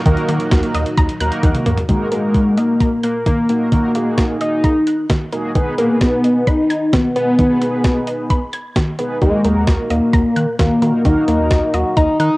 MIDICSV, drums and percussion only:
0, 0, Header, 1, 2, 480
1, 0, Start_track
1, 0, Tempo, 458015
1, 61, Time_signature, 4, 2, 24, 8
1, 12967, End_track
2, 0, Start_track
2, 0, Title_t, "Drums"
2, 61, Note_on_c, 9, 36, 113
2, 61, Note_on_c, 9, 42, 74
2, 165, Note_off_c, 9, 42, 0
2, 166, Note_off_c, 9, 36, 0
2, 179, Note_on_c, 9, 42, 36
2, 284, Note_off_c, 9, 42, 0
2, 300, Note_on_c, 9, 42, 75
2, 405, Note_off_c, 9, 42, 0
2, 418, Note_on_c, 9, 42, 49
2, 523, Note_off_c, 9, 42, 0
2, 539, Note_on_c, 9, 38, 105
2, 539, Note_on_c, 9, 42, 70
2, 540, Note_on_c, 9, 36, 114
2, 644, Note_off_c, 9, 36, 0
2, 644, Note_off_c, 9, 38, 0
2, 644, Note_off_c, 9, 42, 0
2, 660, Note_on_c, 9, 42, 49
2, 765, Note_off_c, 9, 42, 0
2, 780, Note_on_c, 9, 42, 74
2, 885, Note_off_c, 9, 42, 0
2, 901, Note_on_c, 9, 42, 53
2, 1006, Note_off_c, 9, 42, 0
2, 1020, Note_on_c, 9, 42, 71
2, 1021, Note_on_c, 9, 36, 118
2, 1125, Note_off_c, 9, 42, 0
2, 1126, Note_off_c, 9, 36, 0
2, 1140, Note_on_c, 9, 42, 59
2, 1245, Note_off_c, 9, 42, 0
2, 1262, Note_on_c, 9, 42, 80
2, 1366, Note_off_c, 9, 42, 0
2, 1380, Note_on_c, 9, 42, 61
2, 1485, Note_off_c, 9, 42, 0
2, 1500, Note_on_c, 9, 42, 78
2, 1500, Note_on_c, 9, 48, 57
2, 1501, Note_on_c, 9, 36, 118
2, 1605, Note_off_c, 9, 42, 0
2, 1605, Note_off_c, 9, 48, 0
2, 1606, Note_off_c, 9, 36, 0
2, 1620, Note_on_c, 9, 42, 53
2, 1621, Note_on_c, 9, 47, 63
2, 1725, Note_off_c, 9, 42, 0
2, 1726, Note_off_c, 9, 47, 0
2, 1741, Note_on_c, 9, 42, 65
2, 1741, Note_on_c, 9, 45, 88
2, 1846, Note_off_c, 9, 42, 0
2, 1846, Note_off_c, 9, 45, 0
2, 1861, Note_on_c, 9, 43, 90
2, 1862, Note_on_c, 9, 42, 48
2, 1966, Note_off_c, 9, 43, 0
2, 1967, Note_off_c, 9, 42, 0
2, 1981, Note_on_c, 9, 36, 104
2, 1981, Note_on_c, 9, 42, 71
2, 2085, Note_off_c, 9, 42, 0
2, 2086, Note_off_c, 9, 36, 0
2, 2221, Note_on_c, 9, 42, 70
2, 2326, Note_off_c, 9, 42, 0
2, 2459, Note_on_c, 9, 42, 63
2, 2460, Note_on_c, 9, 36, 107
2, 2564, Note_off_c, 9, 36, 0
2, 2564, Note_off_c, 9, 42, 0
2, 2700, Note_on_c, 9, 42, 68
2, 2805, Note_off_c, 9, 42, 0
2, 2941, Note_on_c, 9, 36, 108
2, 2941, Note_on_c, 9, 42, 69
2, 3045, Note_off_c, 9, 42, 0
2, 3046, Note_off_c, 9, 36, 0
2, 3182, Note_on_c, 9, 42, 75
2, 3287, Note_off_c, 9, 42, 0
2, 3420, Note_on_c, 9, 42, 71
2, 3421, Note_on_c, 9, 36, 110
2, 3525, Note_off_c, 9, 42, 0
2, 3526, Note_off_c, 9, 36, 0
2, 3661, Note_on_c, 9, 42, 62
2, 3766, Note_off_c, 9, 42, 0
2, 3901, Note_on_c, 9, 36, 104
2, 3901, Note_on_c, 9, 42, 70
2, 4005, Note_off_c, 9, 42, 0
2, 4006, Note_off_c, 9, 36, 0
2, 4141, Note_on_c, 9, 42, 73
2, 4246, Note_off_c, 9, 42, 0
2, 4379, Note_on_c, 9, 38, 96
2, 4379, Note_on_c, 9, 42, 65
2, 4380, Note_on_c, 9, 36, 104
2, 4484, Note_off_c, 9, 38, 0
2, 4484, Note_off_c, 9, 42, 0
2, 4485, Note_off_c, 9, 36, 0
2, 4620, Note_on_c, 9, 42, 69
2, 4725, Note_off_c, 9, 42, 0
2, 4861, Note_on_c, 9, 42, 70
2, 4862, Note_on_c, 9, 36, 111
2, 4966, Note_off_c, 9, 42, 0
2, 4967, Note_off_c, 9, 36, 0
2, 5102, Note_on_c, 9, 42, 75
2, 5207, Note_off_c, 9, 42, 0
2, 5341, Note_on_c, 9, 36, 112
2, 5341, Note_on_c, 9, 42, 75
2, 5342, Note_on_c, 9, 38, 101
2, 5445, Note_off_c, 9, 42, 0
2, 5446, Note_off_c, 9, 36, 0
2, 5447, Note_off_c, 9, 38, 0
2, 5581, Note_on_c, 9, 42, 60
2, 5686, Note_off_c, 9, 42, 0
2, 5821, Note_on_c, 9, 36, 105
2, 5821, Note_on_c, 9, 42, 69
2, 5926, Note_off_c, 9, 36, 0
2, 5926, Note_off_c, 9, 42, 0
2, 6061, Note_on_c, 9, 42, 71
2, 6166, Note_off_c, 9, 42, 0
2, 6299, Note_on_c, 9, 42, 63
2, 6300, Note_on_c, 9, 36, 108
2, 6300, Note_on_c, 9, 38, 94
2, 6404, Note_off_c, 9, 38, 0
2, 6404, Note_off_c, 9, 42, 0
2, 6405, Note_off_c, 9, 36, 0
2, 6541, Note_on_c, 9, 42, 66
2, 6646, Note_off_c, 9, 42, 0
2, 6781, Note_on_c, 9, 42, 66
2, 6782, Note_on_c, 9, 36, 114
2, 6886, Note_off_c, 9, 42, 0
2, 6887, Note_off_c, 9, 36, 0
2, 7023, Note_on_c, 9, 42, 77
2, 7127, Note_off_c, 9, 42, 0
2, 7261, Note_on_c, 9, 36, 112
2, 7261, Note_on_c, 9, 42, 75
2, 7262, Note_on_c, 9, 38, 105
2, 7366, Note_off_c, 9, 36, 0
2, 7366, Note_off_c, 9, 42, 0
2, 7367, Note_off_c, 9, 38, 0
2, 7501, Note_on_c, 9, 42, 60
2, 7606, Note_off_c, 9, 42, 0
2, 7740, Note_on_c, 9, 42, 70
2, 7741, Note_on_c, 9, 36, 105
2, 7845, Note_off_c, 9, 42, 0
2, 7846, Note_off_c, 9, 36, 0
2, 7981, Note_on_c, 9, 42, 74
2, 8086, Note_off_c, 9, 42, 0
2, 8219, Note_on_c, 9, 36, 109
2, 8219, Note_on_c, 9, 38, 97
2, 8219, Note_on_c, 9, 42, 66
2, 8323, Note_off_c, 9, 42, 0
2, 8324, Note_off_c, 9, 36, 0
2, 8324, Note_off_c, 9, 38, 0
2, 8460, Note_on_c, 9, 42, 69
2, 8565, Note_off_c, 9, 42, 0
2, 8701, Note_on_c, 9, 36, 113
2, 8701, Note_on_c, 9, 42, 72
2, 8805, Note_off_c, 9, 42, 0
2, 8806, Note_off_c, 9, 36, 0
2, 8941, Note_on_c, 9, 42, 74
2, 9046, Note_off_c, 9, 42, 0
2, 9180, Note_on_c, 9, 42, 74
2, 9181, Note_on_c, 9, 36, 110
2, 9182, Note_on_c, 9, 38, 103
2, 9285, Note_off_c, 9, 42, 0
2, 9286, Note_off_c, 9, 36, 0
2, 9287, Note_off_c, 9, 38, 0
2, 9421, Note_on_c, 9, 42, 63
2, 9525, Note_off_c, 9, 42, 0
2, 9660, Note_on_c, 9, 42, 72
2, 9661, Note_on_c, 9, 36, 107
2, 9765, Note_off_c, 9, 42, 0
2, 9766, Note_off_c, 9, 36, 0
2, 9900, Note_on_c, 9, 42, 72
2, 10005, Note_off_c, 9, 42, 0
2, 10138, Note_on_c, 9, 42, 66
2, 10139, Note_on_c, 9, 36, 111
2, 10139, Note_on_c, 9, 38, 100
2, 10243, Note_off_c, 9, 38, 0
2, 10243, Note_off_c, 9, 42, 0
2, 10244, Note_off_c, 9, 36, 0
2, 10380, Note_on_c, 9, 42, 66
2, 10485, Note_off_c, 9, 42, 0
2, 10620, Note_on_c, 9, 42, 70
2, 10621, Note_on_c, 9, 36, 118
2, 10725, Note_off_c, 9, 42, 0
2, 10726, Note_off_c, 9, 36, 0
2, 10861, Note_on_c, 9, 42, 74
2, 10966, Note_off_c, 9, 42, 0
2, 11100, Note_on_c, 9, 42, 75
2, 11101, Note_on_c, 9, 36, 115
2, 11102, Note_on_c, 9, 38, 108
2, 11205, Note_off_c, 9, 42, 0
2, 11206, Note_off_c, 9, 36, 0
2, 11206, Note_off_c, 9, 38, 0
2, 11341, Note_on_c, 9, 42, 65
2, 11446, Note_off_c, 9, 42, 0
2, 11580, Note_on_c, 9, 42, 70
2, 11581, Note_on_c, 9, 36, 104
2, 11685, Note_off_c, 9, 36, 0
2, 11685, Note_off_c, 9, 42, 0
2, 11821, Note_on_c, 9, 42, 75
2, 11926, Note_off_c, 9, 42, 0
2, 12059, Note_on_c, 9, 36, 109
2, 12059, Note_on_c, 9, 38, 99
2, 12059, Note_on_c, 9, 42, 68
2, 12163, Note_off_c, 9, 42, 0
2, 12164, Note_off_c, 9, 36, 0
2, 12164, Note_off_c, 9, 38, 0
2, 12300, Note_on_c, 9, 42, 69
2, 12405, Note_off_c, 9, 42, 0
2, 12541, Note_on_c, 9, 36, 112
2, 12541, Note_on_c, 9, 42, 73
2, 12646, Note_off_c, 9, 36, 0
2, 12646, Note_off_c, 9, 42, 0
2, 12782, Note_on_c, 9, 42, 77
2, 12887, Note_off_c, 9, 42, 0
2, 12967, End_track
0, 0, End_of_file